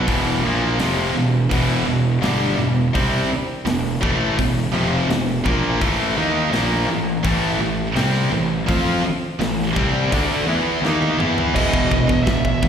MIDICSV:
0, 0, Header, 1, 7, 480
1, 0, Start_track
1, 0, Key_signature, 1, "minor"
1, 0, Tempo, 716846
1, 48, Time_signature, 4, 2, 24, 8
1, 8493, End_track
2, 0, Start_track
2, 0, Title_t, "Lead electric guitar"
2, 0, Program_c, 0, 29
2, 7733, Note_on_c, 0, 75, 93
2, 8190, Note_off_c, 0, 75, 0
2, 8193, Note_on_c, 0, 76, 92
2, 8493, Note_off_c, 0, 76, 0
2, 8493, End_track
3, 0, Start_track
3, 0, Title_t, "Distorted electric guitar"
3, 0, Program_c, 1, 30
3, 44, Note_on_c, 1, 40, 89
3, 51, Note_on_c, 1, 47, 95
3, 52, Note_on_c, 1, 52, 98
3, 279, Note_off_c, 1, 40, 0
3, 282, Note_off_c, 1, 47, 0
3, 283, Note_off_c, 1, 52, 0
3, 297, Note_on_c, 1, 46, 86
3, 299, Note_on_c, 1, 53, 89
3, 305, Note_on_c, 1, 58, 97
3, 525, Note_off_c, 1, 46, 0
3, 526, Note_off_c, 1, 53, 0
3, 529, Note_off_c, 1, 58, 0
3, 530, Note_on_c, 1, 41, 87
3, 536, Note_on_c, 1, 48, 89
3, 536, Note_on_c, 1, 53, 94
3, 762, Note_off_c, 1, 41, 0
3, 765, Note_off_c, 1, 48, 0
3, 765, Note_off_c, 1, 53, 0
3, 774, Note_on_c, 1, 40, 61
3, 778, Note_on_c, 1, 47, 63
3, 963, Note_off_c, 1, 40, 0
3, 965, Note_off_c, 1, 47, 0
3, 1014, Note_on_c, 1, 40, 92
3, 1017, Note_on_c, 1, 47, 89
3, 1022, Note_on_c, 1, 52, 106
3, 1237, Note_off_c, 1, 40, 0
3, 1240, Note_off_c, 1, 47, 0
3, 1245, Note_on_c, 1, 40, 62
3, 1248, Note_off_c, 1, 52, 0
3, 1248, Note_on_c, 1, 47, 64
3, 1439, Note_off_c, 1, 40, 0
3, 1440, Note_off_c, 1, 47, 0
3, 1481, Note_on_c, 1, 43, 89
3, 1486, Note_on_c, 1, 50, 94
3, 1487, Note_on_c, 1, 55, 104
3, 1717, Note_off_c, 1, 43, 0
3, 1719, Note_off_c, 1, 50, 0
3, 1720, Note_off_c, 1, 55, 0
3, 1721, Note_on_c, 1, 47, 66
3, 1722, Note_on_c, 1, 40, 64
3, 1917, Note_off_c, 1, 40, 0
3, 1917, Note_off_c, 1, 47, 0
3, 1966, Note_on_c, 1, 48, 94
3, 1974, Note_on_c, 1, 55, 94
3, 1974, Note_on_c, 1, 60, 116
3, 2200, Note_off_c, 1, 48, 0
3, 2204, Note_off_c, 1, 55, 0
3, 2204, Note_off_c, 1, 60, 0
3, 2447, Note_on_c, 1, 40, 58
3, 2448, Note_on_c, 1, 47, 68
3, 2640, Note_off_c, 1, 40, 0
3, 2640, Note_off_c, 1, 47, 0
3, 2685, Note_on_c, 1, 45, 83
3, 2691, Note_on_c, 1, 52, 87
3, 2694, Note_on_c, 1, 57, 99
3, 2920, Note_off_c, 1, 45, 0
3, 2922, Note_off_c, 1, 52, 0
3, 2924, Note_off_c, 1, 57, 0
3, 2926, Note_on_c, 1, 40, 70
3, 2928, Note_on_c, 1, 47, 75
3, 3119, Note_off_c, 1, 40, 0
3, 3120, Note_off_c, 1, 47, 0
3, 3169, Note_on_c, 1, 41, 90
3, 3172, Note_on_c, 1, 48, 94
3, 3174, Note_on_c, 1, 53, 104
3, 3402, Note_off_c, 1, 41, 0
3, 3403, Note_off_c, 1, 48, 0
3, 3404, Note_off_c, 1, 53, 0
3, 3417, Note_on_c, 1, 40, 65
3, 3419, Note_on_c, 1, 47, 74
3, 3604, Note_off_c, 1, 40, 0
3, 3606, Note_off_c, 1, 47, 0
3, 3654, Note_on_c, 1, 46, 87
3, 3658, Note_on_c, 1, 53, 94
3, 3664, Note_on_c, 1, 58, 95
3, 3884, Note_off_c, 1, 46, 0
3, 3886, Note_off_c, 1, 53, 0
3, 3889, Note_off_c, 1, 58, 0
3, 3895, Note_on_c, 1, 45, 95
3, 3898, Note_on_c, 1, 52, 103
3, 3900, Note_on_c, 1, 57, 102
3, 4125, Note_off_c, 1, 45, 0
3, 4126, Note_off_c, 1, 52, 0
3, 4127, Note_off_c, 1, 57, 0
3, 4130, Note_on_c, 1, 58, 92
3, 4131, Note_on_c, 1, 51, 93
3, 4137, Note_on_c, 1, 63, 88
3, 4357, Note_off_c, 1, 51, 0
3, 4359, Note_on_c, 1, 46, 86
3, 4362, Note_off_c, 1, 58, 0
3, 4365, Note_off_c, 1, 63, 0
3, 4367, Note_on_c, 1, 53, 102
3, 4371, Note_on_c, 1, 58, 101
3, 4597, Note_off_c, 1, 46, 0
3, 4601, Note_off_c, 1, 53, 0
3, 4602, Note_off_c, 1, 58, 0
3, 4615, Note_on_c, 1, 45, 64
3, 4620, Note_on_c, 1, 52, 72
3, 4804, Note_off_c, 1, 45, 0
3, 4806, Note_off_c, 1, 52, 0
3, 4844, Note_on_c, 1, 45, 91
3, 4851, Note_on_c, 1, 52, 101
3, 4853, Note_on_c, 1, 57, 107
3, 5079, Note_off_c, 1, 45, 0
3, 5081, Note_off_c, 1, 52, 0
3, 5083, Note_off_c, 1, 57, 0
3, 5088, Note_on_c, 1, 45, 61
3, 5089, Note_on_c, 1, 52, 63
3, 5280, Note_off_c, 1, 45, 0
3, 5281, Note_off_c, 1, 52, 0
3, 5327, Note_on_c, 1, 48, 95
3, 5333, Note_on_c, 1, 55, 110
3, 5335, Note_on_c, 1, 60, 108
3, 5561, Note_off_c, 1, 48, 0
3, 5564, Note_off_c, 1, 55, 0
3, 5565, Note_off_c, 1, 60, 0
3, 5570, Note_on_c, 1, 45, 62
3, 5572, Note_on_c, 1, 52, 71
3, 5761, Note_off_c, 1, 45, 0
3, 5762, Note_off_c, 1, 52, 0
3, 5808, Note_on_c, 1, 53, 95
3, 5811, Note_on_c, 1, 60, 97
3, 5815, Note_on_c, 1, 65, 106
3, 6041, Note_off_c, 1, 53, 0
3, 6043, Note_off_c, 1, 60, 0
3, 6045, Note_off_c, 1, 65, 0
3, 6297, Note_on_c, 1, 45, 60
3, 6298, Note_on_c, 1, 52, 68
3, 6485, Note_off_c, 1, 45, 0
3, 6485, Note_off_c, 1, 52, 0
3, 6538, Note_on_c, 1, 48, 83
3, 6544, Note_on_c, 1, 55, 95
3, 6544, Note_on_c, 1, 60, 98
3, 6766, Note_off_c, 1, 48, 0
3, 6769, Note_off_c, 1, 55, 0
3, 6769, Note_off_c, 1, 60, 0
3, 6782, Note_on_c, 1, 50, 95
3, 6784, Note_on_c, 1, 57, 95
3, 6791, Note_on_c, 1, 62, 93
3, 7008, Note_off_c, 1, 50, 0
3, 7009, Note_off_c, 1, 57, 0
3, 7012, Note_off_c, 1, 62, 0
3, 7019, Note_on_c, 1, 52, 83
3, 7022, Note_on_c, 1, 59, 85
3, 7028, Note_on_c, 1, 64, 97
3, 7246, Note_off_c, 1, 52, 0
3, 7248, Note_off_c, 1, 59, 0
3, 7251, Note_off_c, 1, 64, 0
3, 7262, Note_on_c, 1, 51, 91
3, 7265, Note_on_c, 1, 58, 90
3, 7268, Note_on_c, 1, 63, 97
3, 7488, Note_off_c, 1, 51, 0
3, 7489, Note_off_c, 1, 58, 0
3, 7491, Note_off_c, 1, 63, 0
3, 7498, Note_on_c, 1, 52, 84
3, 7499, Note_on_c, 1, 59, 85
3, 7505, Note_on_c, 1, 64, 85
3, 7726, Note_off_c, 1, 52, 0
3, 7726, Note_off_c, 1, 59, 0
3, 7729, Note_off_c, 1, 64, 0
3, 7737, Note_on_c, 1, 40, 93
3, 7741, Note_on_c, 1, 47, 95
3, 7744, Note_on_c, 1, 52, 105
3, 7958, Note_off_c, 1, 40, 0
3, 7960, Note_off_c, 1, 47, 0
3, 7961, Note_off_c, 1, 52, 0
3, 7981, Note_on_c, 1, 47, 78
3, 7984, Note_on_c, 1, 40, 65
3, 8091, Note_off_c, 1, 47, 0
3, 8092, Note_off_c, 1, 40, 0
3, 8099, Note_on_c, 1, 47, 85
3, 8100, Note_on_c, 1, 40, 71
3, 8213, Note_off_c, 1, 47, 0
3, 8214, Note_off_c, 1, 40, 0
3, 8225, Note_on_c, 1, 47, 86
3, 8226, Note_on_c, 1, 40, 89
3, 8432, Note_off_c, 1, 40, 0
3, 8432, Note_off_c, 1, 47, 0
3, 8458, Note_on_c, 1, 47, 80
3, 8465, Note_on_c, 1, 40, 66
3, 8493, Note_off_c, 1, 40, 0
3, 8493, Note_off_c, 1, 47, 0
3, 8493, End_track
4, 0, Start_track
4, 0, Title_t, "Picked electric bass"
4, 0, Program_c, 2, 34
4, 55, Note_on_c, 2, 28, 87
4, 275, Note_off_c, 2, 28, 0
4, 281, Note_on_c, 2, 34, 85
4, 507, Note_off_c, 2, 34, 0
4, 526, Note_on_c, 2, 29, 87
4, 750, Note_off_c, 2, 29, 0
4, 767, Note_on_c, 2, 28, 69
4, 991, Note_off_c, 2, 28, 0
4, 1016, Note_on_c, 2, 28, 88
4, 1236, Note_off_c, 2, 28, 0
4, 1249, Note_on_c, 2, 28, 74
4, 1472, Note_off_c, 2, 28, 0
4, 1489, Note_on_c, 2, 31, 88
4, 1712, Note_off_c, 2, 31, 0
4, 1728, Note_on_c, 2, 28, 81
4, 1951, Note_off_c, 2, 28, 0
4, 1975, Note_on_c, 2, 36, 87
4, 2195, Note_off_c, 2, 36, 0
4, 2446, Note_on_c, 2, 28, 82
4, 2670, Note_off_c, 2, 28, 0
4, 2700, Note_on_c, 2, 33, 83
4, 2918, Note_off_c, 2, 33, 0
4, 2938, Note_on_c, 2, 28, 76
4, 3155, Note_off_c, 2, 28, 0
4, 3159, Note_on_c, 2, 29, 88
4, 3387, Note_off_c, 2, 29, 0
4, 3404, Note_on_c, 2, 28, 79
4, 3629, Note_off_c, 2, 28, 0
4, 3651, Note_on_c, 2, 34, 89
4, 3873, Note_off_c, 2, 34, 0
4, 3894, Note_on_c, 2, 33, 89
4, 4115, Note_off_c, 2, 33, 0
4, 4130, Note_on_c, 2, 39, 91
4, 4352, Note_off_c, 2, 39, 0
4, 4364, Note_on_c, 2, 34, 91
4, 4589, Note_off_c, 2, 34, 0
4, 4599, Note_on_c, 2, 33, 73
4, 4827, Note_off_c, 2, 33, 0
4, 4851, Note_on_c, 2, 33, 96
4, 5073, Note_off_c, 2, 33, 0
4, 5084, Note_on_c, 2, 33, 76
4, 5309, Note_off_c, 2, 33, 0
4, 5325, Note_on_c, 2, 36, 95
4, 5550, Note_off_c, 2, 36, 0
4, 5563, Note_on_c, 2, 33, 81
4, 5789, Note_off_c, 2, 33, 0
4, 5818, Note_on_c, 2, 41, 87
4, 6037, Note_off_c, 2, 41, 0
4, 6288, Note_on_c, 2, 33, 77
4, 6511, Note_off_c, 2, 33, 0
4, 6540, Note_on_c, 2, 36, 82
4, 6758, Note_off_c, 2, 36, 0
4, 6782, Note_on_c, 2, 38, 93
4, 6999, Note_off_c, 2, 38, 0
4, 7003, Note_on_c, 2, 40, 90
4, 7229, Note_off_c, 2, 40, 0
4, 7245, Note_on_c, 2, 39, 88
4, 7469, Note_off_c, 2, 39, 0
4, 7484, Note_on_c, 2, 40, 87
4, 7709, Note_off_c, 2, 40, 0
4, 7740, Note_on_c, 2, 28, 94
4, 8064, Note_off_c, 2, 28, 0
4, 8217, Note_on_c, 2, 28, 98
4, 8378, Note_off_c, 2, 28, 0
4, 8457, Note_on_c, 2, 39, 87
4, 8493, Note_off_c, 2, 39, 0
4, 8493, End_track
5, 0, Start_track
5, 0, Title_t, "Muted distorted electric guitar strokes"
5, 2209, Note_on_c, 9, 29, 58
5, 2276, Note_off_c, 9, 29, 0
5, 6056, Note_on_c, 9, 29, 58
5, 6123, Note_off_c, 9, 29, 0
5, 8493, End_track
6, 0, Start_track
6, 0, Title_t, "Muted picked electric bass strokes"
6, 2207, Note_on_c, 9, 29, 37
6, 2274, Note_off_c, 9, 29, 0
6, 6048, Note_on_c, 9, 29, 39
6, 6115, Note_off_c, 9, 29, 0
6, 8493, End_track
7, 0, Start_track
7, 0, Title_t, "Drums"
7, 53, Note_on_c, 9, 36, 103
7, 57, Note_on_c, 9, 46, 56
7, 120, Note_off_c, 9, 36, 0
7, 124, Note_off_c, 9, 46, 0
7, 532, Note_on_c, 9, 46, 54
7, 537, Note_on_c, 9, 38, 104
7, 599, Note_off_c, 9, 46, 0
7, 604, Note_off_c, 9, 38, 0
7, 1013, Note_on_c, 9, 36, 113
7, 1018, Note_on_c, 9, 46, 59
7, 1080, Note_off_c, 9, 36, 0
7, 1084, Note_off_c, 9, 46, 0
7, 1494, Note_on_c, 9, 46, 53
7, 1500, Note_on_c, 9, 38, 108
7, 1561, Note_off_c, 9, 46, 0
7, 1567, Note_off_c, 9, 38, 0
7, 1976, Note_on_c, 9, 36, 101
7, 1979, Note_on_c, 9, 46, 56
7, 2043, Note_off_c, 9, 36, 0
7, 2046, Note_off_c, 9, 46, 0
7, 2455, Note_on_c, 9, 46, 56
7, 2460, Note_on_c, 9, 38, 106
7, 2522, Note_off_c, 9, 46, 0
7, 2527, Note_off_c, 9, 38, 0
7, 2698, Note_on_c, 9, 36, 106
7, 2765, Note_off_c, 9, 36, 0
7, 2938, Note_on_c, 9, 36, 95
7, 2943, Note_on_c, 9, 46, 63
7, 3005, Note_off_c, 9, 36, 0
7, 3010, Note_off_c, 9, 46, 0
7, 3418, Note_on_c, 9, 46, 55
7, 3423, Note_on_c, 9, 38, 102
7, 3485, Note_off_c, 9, 46, 0
7, 3490, Note_off_c, 9, 38, 0
7, 3655, Note_on_c, 9, 36, 98
7, 3722, Note_off_c, 9, 36, 0
7, 3894, Note_on_c, 9, 36, 99
7, 3895, Note_on_c, 9, 46, 56
7, 3961, Note_off_c, 9, 36, 0
7, 3962, Note_off_c, 9, 46, 0
7, 4374, Note_on_c, 9, 46, 55
7, 4380, Note_on_c, 9, 38, 104
7, 4441, Note_off_c, 9, 46, 0
7, 4446, Note_off_c, 9, 38, 0
7, 4852, Note_on_c, 9, 36, 110
7, 4852, Note_on_c, 9, 46, 59
7, 4919, Note_off_c, 9, 36, 0
7, 4919, Note_off_c, 9, 46, 0
7, 5332, Note_on_c, 9, 46, 53
7, 5338, Note_on_c, 9, 38, 101
7, 5399, Note_off_c, 9, 46, 0
7, 5405, Note_off_c, 9, 38, 0
7, 5816, Note_on_c, 9, 36, 103
7, 5818, Note_on_c, 9, 46, 54
7, 5883, Note_off_c, 9, 36, 0
7, 5885, Note_off_c, 9, 46, 0
7, 6301, Note_on_c, 9, 46, 54
7, 6306, Note_on_c, 9, 38, 106
7, 6368, Note_off_c, 9, 46, 0
7, 6373, Note_off_c, 9, 38, 0
7, 6538, Note_on_c, 9, 36, 110
7, 6604, Note_off_c, 9, 36, 0
7, 6779, Note_on_c, 9, 36, 106
7, 6779, Note_on_c, 9, 46, 59
7, 6846, Note_off_c, 9, 36, 0
7, 6846, Note_off_c, 9, 46, 0
7, 7264, Note_on_c, 9, 38, 60
7, 7331, Note_off_c, 9, 38, 0
7, 7381, Note_on_c, 9, 48, 63
7, 7448, Note_off_c, 9, 48, 0
7, 7501, Note_on_c, 9, 45, 82
7, 7568, Note_off_c, 9, 45, 0
7, 7620, Note_on_c, 9, 43, 82
7, 7687, Note_off_c, 9, 43, 0
7, 7740, Note_on_c, 9, 36, 85
7, 7741, Note_on_c, 9, 49, 121
7, 7741, Note_on_c, 9, 52, 64
7, 7807, Note_off_c, 9, 36, 0
7, 7807, Note_off_c, 9, 49, 0
7, 7807, Note_off_c, 9, 52, 0
7, 7858, Note_on_c, 9, 36, 90
7, 7925, Note_off_c, 9, 36, 0
7, 7978, Note_on_c, 9, 36, 86
7, 8045, Note_off_c, 9, 36, 0
7, 8098, Note_on_c, 9, 36, 90
7, 8165, Note_off_c, 9, 36, 0
7, 8213, Note_on_c, 9, 52, 65
7, 8217, Note_on_c, 9, 36, 89
7, 8218, Note_on_c, 9, 38, 118
7, 8280, Note_off_c, 9, 52, 0
7, 8284, Note_off_c, 9, 36, 0
7, 8285, Note_off_c, 9, 38, 0
7, 8335, Note_on_c, 9, 36, 84
7, 8402, Note_off_c, 9, 36, 0
7, 8455, Note_on_c, 9, 36, 98
7, 8493, Note_off_c, 9, 36, 0
7, 8493, End_track
0, 0, End_of_file